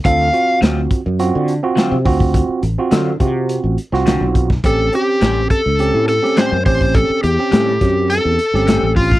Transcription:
<<
  \new Staff \with { instrumentName = "Electric slide guitar" } { \time 4/4 \key a \dorian \tempo 4 = 104 eis''4 r2. | r1 | a'8 g'4 a'4 a'8 bis'8 bis'8 | a'8 g'4. a'4. f'8 | }
  \new Staff \with { instrumentName = "Tine electric piano" } { \time 4/4 \key a \dorian <c' eis' a'>8 <c' eis' fis'>4~ <c' eis' fis'>16 r16 <c' eis' fis'>8 r16 <c' eis' fis'>8 r16 <c' eis' fis'>8~ | <c' eis' fis'>8 r16 <c' eis' fis'>8 r16 <c' eis' fis'>4 r16 <c' eis' fis'>4 r16 | <bis cis' g'>8 <bis cis' g'>4~ <bis cis' g'>16 r16 <bis cis' g'>8 r16 <bis cis' g'>8 r16 <bis cis' g'>8~ | <bis cis' g'>8 r16 <bis cis' g'>8 r16 <bis cis' g'>4 r16 <bis cis' g'>4 r16 | }
  \new Staff \with { instrumentName = "Clean electric guitar" } { \time 4/4 \key a \dorian r4 <d fis c' eis'>8 r4. <d fis c' eis'>8 r8 | r4 <d fis c' eis'>8 r4. <d fis c' eis'>8 r8 | r4 <a, g bis cis'>8 r4. <a, g bis cis'>8 r8 | r4 <a, g bis cis'>8 r4. <a, g bis cis'>8 r8 | }
  \new Staff \with { instrumentName = "Fretless electric bass" } { \clef bass \time 4/4 \key a \dorian d,8 r8 d,8 r16 fis,8 d8 r8 c16 d,8~ | d,16 r16 a,,16 r16 d8 c8. a,,16 r16 c,8 b,,8. | a,,8 r8 a,,8 r16 cis,8 a,8 r8 fis,16 a,,8~ | a,,16 r16 e,16 r16 a,8 fis,8. e,16 r16 g,,8 a,,8. | }
  \new DrumStaff \with { instrumentName = "Drums" } \drummode { \time 4/4 <hh bd>8 hh8 <hh sn>8 <hh bd>8 hh8 hh8 <hh sn>8 <hho bd>16 bd16 | <hh bd>8 hh8 <hh sn>8 <hh bd>8 hh8 hh16 sn16 <hh sn>8 <hh bd>16 <bd sn>16 | <hh bd>8 hh8 <hh sn>8 <hh bd>8 hh8 hh16 sn16 <hh sn>8 <hho bd>16 bd16 | <hh bd>8 hh8 <hh sn>8 <hh bd sn>8 hh8 hh16 sn16 <hh sn>8 <hho bd>16 <bd sn>16 | }
>>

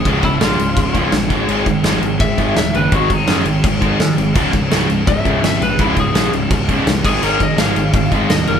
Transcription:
<<
  \new Staff \with { instrumentName = "Lead electric guitar" } { \time 4/4 \key aes \mixolydian \tempo 4 = 167 r8 fes'8 f'2 r4 | r2 fes''4 fes''8 ces''8 | ges'8 ees'4 r2 r8 | r2 fes''4 fes''8 ces''8 |
fes'8 aes'4 r2 aes'8 | bes'8 ees''8 f''2 ees''8 bes'8 | }
  \new Staff \with { instrumentName = "Distorted electric guitar" } { \clef bass \time 4/4 \key aes \mixolydian <des, aes, des>2.~ <des, aes, des>8 <aes, ees aes>8~ | <aes, ees aes>2.~ <aes, ees aes>8 <aes, ees aes>8~ | <aes, ees aes>2.~ <aes, ees aes>8 r8 | <des, aes, des>1 |
<des, aes, des>2.~ <des, aes, des>8 <aes, ees aes>8~ | <aes, ees aes>2.~ <aes, ees aes>8 <aes, ees aes>8 | }
  \new Staff \with { instrumentName = "Distorted electric guitar" } { \clef bass \time 4/4 \key aes \mixolydian <des, aes, des>8 <des, aes,>8 <des, aes, des>8 <des, aes,>8 <des, aes,>8 <des, aes, des>8 <des, aes,>8 <aes, ees aes>8 | <aes, ees aes>8 <aes, ees>8 <aes, ees aes>8 <aes, ees>8 <aes, ees>8 <aes, ees aes>8 <aes, ees>8 <aes, ees>8 | <aes, ees aes>8 <aes, ees>8 <aes, ees aes>8 <aes, ees>8 <aes, ees>8 <aes, ees aes>8 <aes, ees>8 <aes, ees>8 | <des, aes, des>8 <des, aes,>8 <des, aes, des>8 <des, aes,>8 <des, aes,>8 <des, aes, des>8 <des, aes,>8 <des, aes,>8 |
<des, aes, des>8 <des, aes,>8 <des, aes, des>8 <des, aes,>8 <des, aes,>8 <des, aes, des>8 <des, aes,>8 <aes, ees aes>8 | <aes, ees aes>8 <aes, ees>8 <aes, ees aes>8 <aes, ees>8 <aes, ees>8 <aes, ees aes>8 <aes, ees>8 <aes, ees>8 | }
  \new Staff \with { instrumentName = "Distorted electric guitar" } { \clef bass \time 4/4 \key aes \mixolydian <des, aes, des>8 <des, aes,>8 <des, aes, des>8 <des, aes,>8 <des, aes,>8 <des, aes, des>8 <des, aes,>8 <aes, ees aes>8 | <aes, ees aes>8 <aes, ees>8 <aes, ees aes>8 <aes, ees>8 <aes, ees>8 <aes, ees aes>8 <aes, ees>8 <aes, ees>8 | <aes, ees aes>8 <aes, ees>8 <aes, ees aes>8 <aes, ees>8 <aes, ees>8 <aes, ees aes>8 <aes, ees>8 <aes, ees>8 | <des, aes, des>8 <des, aes,>8 <des, aes, des>8 <des, aes,>8 <des, aes,>8 <des, aes, des>8 <des, aes,>8 <des, aes,>8 |
<des, aes, des>8 <des, aes,>8 <des, aes, des>8 <des, aes,>8 <des, aes,>8 <des, aes, des>8 <des, aes,>8 <aes, ees aes>8 | <aes, ees aes>8 <aes, ees>8 <aes, ees aes>8 <aes, ees>8 <aes, ees>8 <aes, ees aes>8 <aes, ees>8 <aes, ees>8 | }
  \new Staff \with { instrumentName = "Picked electric bass" } { \clef bass \time 4/4 \key aes \mixolydian des,,8 des,,8 bes,,8 des,,8 des,,4 bes,,8 aes,,8 | aes,,8 aes,,8 aes,,8 aes,,8 aes,,8 aes,,8 ees,,8 ges,,8 | aes,,8 aes,,8 ges,8 aes,,8 aes,,4 aes,8 aes,,8 | des,,8 des,,8 des,,8 des,,8 des,,8 des,,8 aes,,8 bes,,8 |
des,,8 des,,8 bes,,8 des,,8 des,,4 des,8 aes,,8 | aes,,8 aes,,8 aes,,8 aes,,8 aes,,8 aes,,8 ees,,8 ges,,8 | }
  \new DrumStaff \with { instrumentName = "Drums" } \drummode { \time 4/4 <cymc bd>8 <cymc bd>8 <cymc sn>8 cymc8 <cymc bd>8 <cymc bd>8 <cymc sn>8 <cymc bd>8 | cymc8 <cymc bd>8 <cymc sn>8 cymc8 <cymc bd>8 <cymc bd>8 <cymc sn>8 cymc8 | <cymc bd>8 <cymc bd>8 <cymc sn>8 cymc8 <cymc bd>8 <cymc bd>8 <cymc sn>8 cymc8 | <cymc bd>8 <cymc bd>8 <cymc sn>8 cymc8 <cymc bd>8 <cymc bd>8 <cymc sn>8 cymc8 |
<cymc bd>8 <cymc bd>8 <cymc sn>8 cymc8 <cymc bd>8 <cymc bd>8 <cymc sn>8 <cymc bd>8 | cymc8 <cymc bd>8 <cymc sn>8 cymc8 <cymc bd>8 <cymc bd>8 <cymc sn>8 cymc8 | }
>>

